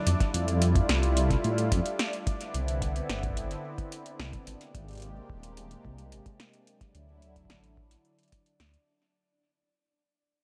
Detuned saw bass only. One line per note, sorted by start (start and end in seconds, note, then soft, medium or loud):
0.07 0.15 F2 medium
0.34 0.81 F2 medium
0.89 1.36 C2 medium
1.44 1.73 A2 medium
1.72 1.80 F2 medium
2.54 3.01 C2 medium
3.09 3.56 G1 medium
4.20 4.37 C2 medium
4.47 4.56 G#1 medium
4.75 5.21 G#1 medium
5.30 5.76 D#1 medium
5.85 6.14 C2 medium
6.12 6.21 G#1 medium
6.95 7.41 D2 medium
7.50 7.97 A1 medium
8.60 8.77 D2 medium